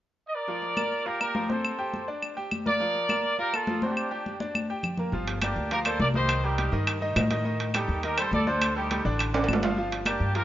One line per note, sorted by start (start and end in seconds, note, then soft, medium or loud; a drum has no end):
0.26 0.33 D#5 medium
0.33 1.04 A#4 medium
0.33 1.06 D5 medium
0.48 0.72 F3 medium
0.48 0.72 F4 medium
0.48 high conga soft
0.62 high conga soft
0.77 1.01 A#3 medium
0.77 1.01 A#4 medium
0.77 high conga medium
0.77 claves medium
0.92 high conga soft
1.06 1.18 F4 medium
1.06 1.20 G4 medium
1.06 1.19 A#4 medium
1.06 1.18 F5 medium
1.06 high conga soft
1.20 1.32 A#3 medium
1.20 1.48 G4 medium
1.20 1.48 A#4 medium
1.20 1.33 A#4 medium
1.20 high conga soft
1.20 claves medium
1.35 1.47 F3 medium
1.35 1.47 F4 medium
1.35 high conga medium
1.49 1.73 C4 medium
1.49 2.08 A4 medium
1.49 1.73 C5 medium
1.49 2.08 C5 medium
1.49 high conga medium
1.65 high conga soft
1.65 claves medium
1.79 2.03 G4 medium
1.79 2.03 G5 medium
1.79 high conga soft
1.94 high conga medium
2.08 2.32 D4 medium
2.08 2.32 D5 medium
2.08 high conga soft
2.23 high conga soft
2.23 claves medium
2.37 2.61 G4 medium
2.37 2.61 G5 medium
2.37 high conga soft
2.51 high conga medium
2.51 claves medium
2.66 2.78 A#3 medium
2.66 2.78 A#4 medium
2.66 3.36 A#4 medium
2.66 3.35 D5 loud
2.66 high conga medium
2.80 3.04 F3 medium
2.80 3.04 F4 medium
2.80 high conga soft
2.95 high conga soft
3.09 3.33 A#3 medium
3.09 3.33 A#4 medium
3.09 high conga medium
3.09 claves medium
3.23 high conga soft
3.38 3.51 F4 medium
3.38 3.54 G4 medium
3.38 3.53 A#4 medium
3.38 3.51 F5 medium
3.38 high conga soft
3.53 3.65 A#3 medium
3.53 3.83 F4 medium
3.53 3.83 A4 medium
3.53 3.66 A#4 medium
3.53 high conga soft
3.53 claves medium
3.67 3.80 F3 medium
3.67 3.80 F4 medium
3.67 high conga medium
3.82 4.06 C4 medium
3.82 4.37 D4 medium
3.82 4.37 G4 medium
3.82 4.07 C5 medium
3.82 high conga medium
3.97 high conga soft
3.97 claves medium
4.11 4.35 G4 medium
4.11 4.35 G5 medium
4.11 high conga soft
4.26 high conga medium
4.40 4.64 D4 medium
4.40 4.64 D5 medium
4.40 high conga medium
4.55 high conga medium
4.55 claves medium
4.70 4.94 G4 medium
4.70 4.94 G5 medium
4.83 low conga medium
4.83 claves medium
4.97 5.11 A#3 medium
4.97 5.11 A#4 medium
4.97 low conga medium
5.12 5.53 G1 medium
5.12 5.37 F3 medium
5.12 5.37 F4 medium
5.12 5.37 F5 medium
5.12 high conga soft
5.27 high conga soft
5.27 high timbale medium
5.42 5.67 A#3 medium
5.42 5.70 D4 medium
5.42 5.69 G4 medium
5.42 5.67 A#4 medium
5.42 5.67 D5 medium
5.42 high conga medium
5.42 high timbale medium
5.42 claves medium
5.56 5.97 D2 medium
5.56 high conga soft
5.71 5.83 F3 medium
5.71 5.84 F4 medium
5.71 5.79 G4 medium
5.71 5.78 A#4 medium
5.71 5.84 F5 medium
5.71 high conga soft
5.71 high timbale medium
5.85 6.10 A#3 medium
5.85 5.99 A4 medium
5.85 6.10 A#4 medium
5.85 5.99 C5 medium
5.85 6.10 D5 medium
5.85 high conga soft
5.85 high timbale medium
5.85 claves medium
5.99 6.67 C2 medium
5.99 6.08 A#4 medium
5.99 6.07 D5 loud
5.99 high conga medium
6.14 6.39 D#3 medium
6.14 6.39 D#4 medium
6.14 6.42 G4 medium
6.14 6.42 C5 medium
6.14 6.39 D#5 medium
6.14 high conga medium
6.29 high conga soft
6.29 high timbale medium
6.29 claves medium
6.44 6.56 G3 medium
6.44 6.74 D#4 medium
6.44 6.56 G4 medium
6.44 6.73 G4 medium
6.44 6.56 A#4 medium
6.44 high conga soft
6.58 6.70 G3 medium
6.58 6.70 G4 medium
6.58 6.70 A#4 medium
6.58 high conga medium
6.58 high timbale medium
6.72 7.13 G2 medium
6.72 6.96 D#3 medium
6.72 6.97 D#4 medium
6.72 6.97 D#5 medium
6.72 high conga soft
6.87 high conga soft
6.87 high timbale medium
6.87 claves medium
7.01 7.25 D#3 medium
7.01 7.26 D#4 medium
7.01 7.26 D#5 medium
7.01 high conga soft
7.16 7.83 A2 medium
7.16 high conga medium
7.16 high timbale medium
7.16 low timbale medium
7.16 claves medium
7.30 7.43 D#3 medium
7.30 7.43 D#4 medium
7.30 7.43 D#5 medium
7.30 high conga medium
7.30 high timbale medium
7.45 7.69 D#3 medium
7.45 7.69 D#4 medium
7.45 7.69 D#5 medium
7.45 high conga soft
7.60 high conga soft
7.60 high timbale medium
7.74 7.98 G3 medium
7.74 8.02 D#4 medium
7.74 7.99 G4 medium
7.74 8.02 G4 medium
7.74 7.99 A4 medium
7.74 high conga medium
7.74 high timbale medium
7.74 claves medium
7.88 8.29 D#2 medium
7.88 high conga soft
8.03 8.16 D#3 medium
8.03 8.16 D#4 medium
8.03 8.18 G4 medium
8.03 8.18 A#4 loud
8.03 8.16 D#5 medium
8.03 high conga soft
8.03 high timbale medium
8.18 8.42 G3 medium
8.18 8.42 G4 medium
8.18 8.42 A4 medium
8.18 8.32 A4 medium
8.18 8.32 C5 medium
8.18 high conga soft
8.18 high timbale medium
8.18 claves medium
8.31 8.99 D2 medium
8.31 8.46 A4 medium
8.31 8.46 D5 loud
8.31 high conga medium
8.47 8.71 D3 medium
8.47 8.71 D4 medium
8.47 8.76 A4 medium
8.47 8.76 C5 medium
8.47 8.71 D5 medium
8.47 high conga medium
8.62 high conga soft
8.62 high timbale medium
8.62 claves medium
8.76 8.88 G3 medium
8.76 9.04 D#4 medium
8.76 9.03 G4 medium
8.76 8.88 G4 medium
8.76 8.88 A4 medium
8.76 high conga soft
8.90 9.02 G3 medium
8.90 9.03 G4 medium
8.90 9.03 A4 medium
8.90 high conga medium
8.90 high timbale medium
9.05 9.45 A1 medium
9.05 9.29 D3 medium
9.05 9.29 D4 medium
9.05 9.29 D5 medium
9.05 high conga soft
9.19 high conga soft
9.19 high timbale medium
9.19 claves medium
9.34 9.58 D3 medium
9.34 9.58 D4 medium
9.34 9.58 D5 medium
9.34 high conga soft
9.34 high timbale medium
9.44 high timbale medium
9.48 10.15 G1 medium
9.48 high conga medium
9.48 claves medium
9.53 low timbale medium
9.63 9.75 F3 medium
9.63 9.75 F4 medium
9.63 9.76 F5 medium
9.63 high conga medium
9.63 low timbale medium
9.77 10.01 F3 medium
9.77 10.01 F4 medium
9.77 10.02 F5 medium
9.77 high conga soft
9.91 high conga soft
9.91 high timbale medium
10.05 10.30 A#3 medium
10.05 10.34 D4 medium
10.05 10.33 G4 medium
10.05 10.30 A#4 medium
10.05 10.31 D5 medium
10.05 high conga medium
10.05 high timbale medium
10.05 claves medium
10.20 10.44 G2 medium
10.20 high conga soft
10.35 10.44 F3 medium
10.35 10.44 F4 medium
10.35 10.44 G4 medium
10.35 10.44 A#4 loud
10.35 10.44 F5 medium
10.35 high conga soft
10.35 high timbale medium